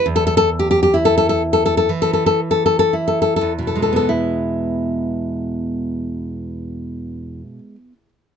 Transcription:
\new Staff \with { instrumentName = "Nylon-string guitar" } { \time 4/4 \key c \lydian \tempo 4 = 56 << { r32 a'32 a'32 a'32 r32 g'32 g'32 g'32 r32 a'32 a'32 a'32 r32 a'32 a'32 a'32 r32 a'32 a'32 a'32 r32 a'32 a'32 a'32 r32 a'32 a'32 a'32 r32 a'32 a'32 a'32 | <e, b, gis b e'>1 | } \\ { e,4 e'4 e4 e'4 | r1 | } >> }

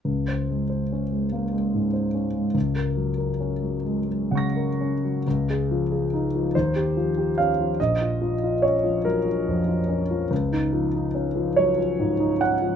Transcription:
<<
  \new Staff \with { instrumentName = "Grand piano" } { \time 6/8 \key des \major \tempo 4. = 48 r2. | r2 <ges'' des''' bes'''>4 | r4. c''4 f''8 | ees''4 des''8 bes'4. |
r4. des''4 ges''8 | }
  \new Staff \with { instrumentName = "Grand piano" } { \clef bass \time 6/8 \key des \major des,16 c''16 aes16 c''16 des'16 aes16 bes16 aes16 aes,16 c''16 des'16 aes16 | des,16 bes'16 ges16 bes'16 des'16 ges16 aes16 ges16 des16 bes'16 des'16 ges16 | des,16 aes'16 f16 aes'16 ees'16 f16 ees,16 g'16 f16 g'16 des'16 f16 | bes,,16 f'16 f16 f'16 des'16 f16 ges16 f16 f,16 f'16 des'16 f16 |
des,16 ees'16 f16 ees'16 des'16 f16 ges16 f16 aes,16 ees'16 des'16 f16 | }
>>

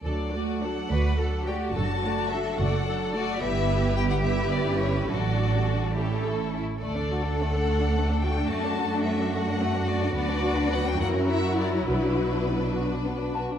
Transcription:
<<
  \new Staff \with { instrumentName = "Flute" } { \time 6/8 \key d \major \tempo 4. = 71 r2. | r2. | r2. | r2. |
r2. | r2. | \key b \minor r2. | r2 r8 a''8 | }
  \new Staff \with { instrumentName = "Violin section" } { \time 6/8 \key d \major d''4 fis''4. g''8 | a''4 e''8 fis''4 d''8 | e''4 g''16 fis''16 e''8 d''8 cis''16 b'16 | d''4. r4. |
d''4 fis''4. g''8 | a''4 e''8 fis''4 d''8 | \key b \minor d''4 fis''16 g''16 fis''8 e''8 d''16 cis''16 | b'2~ b'8 r8 | }
  \new Staff \with { instrumentName = "Cello section" } { \time 6/8 \key d \major r4. b'8 a'8 g'8 | fis'4. a'4. | g'2. | fis'4. g'8 a'8 e'8 |
a'2. | fis'2.~ | \key b \minor fis'2. | d'2~ d'16 r8. | }
  \new Staff \with { instrumentName = "Violin section" } { \time 6/8 \key d \major << { a'8 d''8 a'8 d''8 a'8 d''8 | a'8 d''8 a'8 d''8 a'8 d''8 | b'4. b'4. | a'4. a'4 r8 |
a'2.~ | a'2. | \key b \minor b'4. ais'4. | b'2~ b'8 r8 | } \\ { a'8 fis'8 a'8 fis'8 a'8 fis'8 | a'8 fis'8 a'8 fis'8 a'8 fis'8 | e'4. e'4. | fis'4. e'4~ e'16 r16 |
a16 d'16 fis'16 d'16 a16 d'16 fis'16 d'16 a16 d'16 fis'16 d'16 | a16 d'16 fis'16 d'16 a16 d'16 fis'16 d'16 a16 d'16 fis'16 d'16 | b16 d'16 fis'16 d'16 b16 d'16 ais16 cis'16 e'16 fis'16 e'16 cis'16 | b16 d'16 fis'16 d'16 b16 d'16 fis'16 d'16 b16 d'16 fis'16 d'16 | } >> }
  \new Staff \with { instrumentName = "Viola section" } { \time 6/8 \key d \major << { d'8 fis'8 d'8 fis'8 d'8 fis'8 | d'8 fis'8 d'8 fis'8 d'8 fis'8 | b4. b8. cis'8. | d'4. cis'4~ cis'16 r16 |
d'2.~ | d'2. | \key b \minor d'4. e'4.~ | e'4. d'4~ d'16 r16 | } \\ { fis8 a8 fis8 a8 fis8 a8 | fis8 a8 fis8 a8 fis8 a8 | g4. g4. | fis8. g8. a4~ a16 r16 |
a2.~ | a2. | fis2.~ | fis2~ fis8. r16 | } >> }
  \new Staff \with { instrumentName = "Double bass section" } { \clef bass \time 6/8 \key d \major d,4. d,4. | fis,,4. fis,,4. | g,,2. | a,,2~ a,,8 r8 |
d,2. | fis,2. | \key b \minor d,4. fis,4. | b,,2~ b,,8 r8 | }
>>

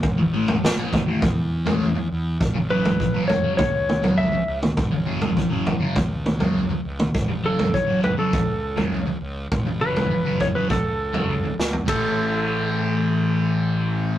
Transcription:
<<
  \new Staff \with { instrumentName = "Electric slide guitar" } { \time 4/4 \key fis \minor \tempo 4 = 101 r1 | r8 b'4 cis''8 cis''4 e''8. r16 | r1 | r8 a'8 cis''8 b'16 a'4 r4 r16 |
r8 b'4 cis''16 b'16 a'4. r8 | a'1 | }
  \new Staff \with { instrumentName = "Distorted electric guitar" } { \clef bass \time 4/4 \key fis \minor r8 <a, e a>16 r8 <a, e a>16 r16 <a, e a>16 r8. <a, e a>16 r4 | r8 <fis, cis fis>16 r8 <fis, cis fis>16 r16 <fis, cis fis>16 r8. <fis, cis fis>16 r4 | r8 <fis, cis fis>16 r8 <fis, cis fis>16 r16 <fis, cis fis>16 r8. <fis, cis fis>16 r4 | r8 <fis, cis fis>16 r8 <fis, cis fis>16 r16 <fis, cis fis>16 r8. <fis, cis fis>16 r4 |
r8 <fis, cis fis>16 r8 <fis, cis fis>16 r16 <fis, cis fis>16 r8. <fis, cis fis>16 r4 | <a, e a>1 | }
  \new Staff \with { instrumentName = "Fingered electric bass" } { \clef bass \time 4/4 \key fis \minor a,,2 e,4 e,8 e,8 | a,,2 cis,4 cis,8 cis,8 | a,,2 cis,4 cis,8 cis,8 | a,,2 cis,4 cis,8 cis,8 |
a,,2 cis,4 cis,8 cis,8 | a,,1 | }
  \new DrumStaff \with { instrumentName = "Drums" } \drummode { \time 4/4 <bd tomfh>8. tomfh16 sn8 <bd tomfh toml>8 <bd tomfh>8. tomfh16 r4 | <bd tomfh>8. tomfh16 bd8 tomfh8 <bd tomfh toml>8 toml16 tomfh16 r8. toml16 | <bd tomfh>8. tomfh16 bd8 tomfh8 <bd tomfh toml>8 toml16 tomfh16 r8. toml16 | <bd tomfh>8. tomfh16 bd8 tomfh8 <bd tomfh>8. tomfh16 r4 |
<bd tomfh>8. tomfh16 r8 <bd tomfh>8 <bd tomfh>8. tomfh16 r8 sn16 tomfh16 | <bd rb>4 r4 r4 r4 | }
>>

